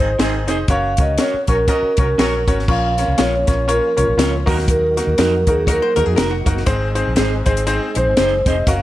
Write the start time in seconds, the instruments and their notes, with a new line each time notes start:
Already playing: vibraphone C5
0.00 fingered electric bass G#1, upright piano D#4 G#4 C5 D#5
0.19 fingered electric bass G#1, horn section D#3 C4 G#4, clean electric guitar C4 D#4 G#4 C5, upright piano D#4 G#4 C5 D#5, snare, closed hi-hat
0.48 fingered electric bass F1, clean electric guitar C4 D#4 G#4 C5, upright piano D#4 G#4 C5 D#5, closed hi-hat
0.68 fingered electric bass F#1, upright piano C#4 F#4 A#4 C#5, vibraphone F5, kick, closed hi-hat
0.97 fingered electric bass C#2, upright piano C#4 F#4 A#4 C#5, kick, closed hi-hat
1.01 vibraphone D#5
1.18 clean electric guitar C#4 F#4 A#4 C#5, upright piano C#4 F#4 A#4 C#5, vibraphone C#5, snare, closed hi-hat
1.34 muted fingered electric bass stroke
1.47 fingered electric bass A#1, horn section F#3 C#4 A#4, upright piano C#4 F#4 A#4 C#5, vibraphone A#4, kick, closed hi-hat
1.67 horn section F#3 C#4 A#4, upright piano C#4 F#4 A#4 D#5, kick, closed hi-hat
1.83 muted fingered electric bass stroke
1.96 fingered electric bass C2, horn section F#3 C#4 A#4, upright piano C#4 F#4 A#4 C#5, kick, closed hi-hat
2.18 fingered electric bass A#1, horn section F#3 C#4 A#4, clean electric guitar C#4 F#4 A#4 C#5, upright piano C#4 F#4 A#4 C#5, snare, closed hi-hat
2.47 fingered electric bass G#1, upright piano C#4 F#4 A#4 C#5, kick, closed hi-hat
2.59 snare
2.68 fingered electric bass A#1, upright piano A#2 C#4 F4 A#4 C#5, tonewheel organ F3 A#3 C#4 F4, vibraphone F5, kick, crash
2.98 upright piano C#4 F4 A#4 C#5, snare, closed hi-hat
3.08 fingered electric bass C2
3.18 fingered electric bass A#1, upright piano C#4 F4 A#4 C#5, clean electric guitar C#4 F4 A#4 C#5, vibraphone C#5, snare, closed hi-hat
3.47 fingered electric bass A#1, upright piano C#4 F4 A#4 C#5, kick, snare, closed hi-hat
3.68 upright piano C#4 F4 A#4 C#5, vibraphone A#4, closed hi-hat
3.97 fingered electric bass C2, upright piano C#4 F4 A#4 C#5, closed hi-hat
4.08 fingered electric bass A#1
4.17 fingered electric bass C#2, upright piano C#4 F4 A#4 C#5, clean electric guitar C#4 F4 A#4 C#5, snare, closed hi-hat
4.46 fingered electric bass D#2, upright piano D#3 A#3 D#4 F#4 A#4, tonewheel organ F#3 D#4 F#4, clean electric guitar A#3 D#4 F#4 A#4, kick, open hi-hat
4.58 snare
4.68 vibraphone A#4, kick, closed hi-hat
4.97 upright piano A#3 D#4 F#4 A#4, snare, closed hi-hat
5.07 fingered electric bass D#2
5.18 fingered electric bass F2, upright piano A#3 D#4 F#4 A#4, clean electric guitar A#3 D#4 F#4 A#4, snare, closed hi-hat
5.47 fingered electric bass D#2, upright piano A#3 D#4 F#4 A#4, vibraphone G#4, kick, closed hi-hat
5.67 upright piano A#3 D#4 F#4 A#4, hollow-body jazz guitar C#5, kick, closed hi-hat
5.71 vibraphone A#4
5.82 hollow-body jazz guitar C5
5.96 fingered electric bass D#2, upright piano A#3 D#4 F#4 A#4, vibraphone G#4, hollow-body jazz guitar A#4, closed hi-hat
6.06 fingered electric bass F2, hollow-body jazz guitar G#4
6.16 fingered electric bass F1, upright piano A#3 D#4 F#4 A#4, clean electric guitar A#3 D#4 F#4 A#4, hollow-body jazz guitar A#4, snare, closed hi-hat
6.31 hollow-body jazz guitar F#4
6.46 fingered electric bass F#1, upright piano A#3 D#4 F#4 A#4, kick, closed hi-hat
6.57 snare
6.66 fingered electric bass G#1, upright piano G#2 C4 D#4 G#4 C5, tonewheel organ G#3 C4 G#4, kick, closed hi-hat
6.95 upright piano C4 D#4 G#4 C5, closed hi-hat
7.07 fingered electric bass A#1
7.16 fingered electric bass G#1, upright piano C4 D#4 G#4 C5, clean electric guitar C4 D#4 G#4 C5, snare, closed hi-hat
7.45 fingered electric bass G#1, upright piano C4 D#4 G#4 C5, kick, closed hi-hat
7.57 closed hi-hat
7.67 upright piano C4 D#4 G#4 C5, closed hi-hat
7.95 fingered electric bass A#1, upright piano C4 D#4 G#4 C5, vibraphone C5, closed hi-hat
8.07 fingered electric bass G#1
8.17 fingered electric bass F#1, clean electric guitar C4 D#4 G#4 C5, upright piano C4 D#4 G#4 C5, snare, closed hi-hat
8.46 fingered electric bass F1, upright piano C4 D#4 G#4 C5, clean electric guitar C4 D#4 G#4 C5, vibraphone D#5, kick, closed hi-hat
8.67 fingered electric bass F#1, tonewheel organ F#3 A#3 C#4 F#4, upright piano A#3 C#4 F#4 A#4, vibraphone F5, kick, closed hi-hat